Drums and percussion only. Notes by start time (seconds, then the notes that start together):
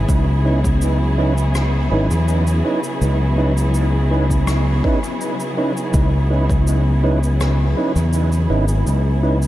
0.09 kick, cabasa
0.64 kick, cabasa
0.82 cabasa
1.38 cabasa
1.55 cross-stick, cabasa
2.11 cabasa
2.28 cabasa
2.47 cabasa
2.84 cabasa
3.02 cabasa
3.58 cabasa
3.74 cabasa
4.30 kick, cabasa
4.47 cross-stick, cabasa
4.84 kick
5.04 cabasa
5.21 cabasa
5.40 cabasa
5.77 cabasa
5.94 kick, cabasa
6.50 kick, cabasa
6.67 cabasa
7.23 cabasa
7.40 cross-stick, cabasa
7.96 cabasa
8.13 cabasa
8.32 cabasa
8.68 cabasa
8.87 cabasa
9.42 cabasa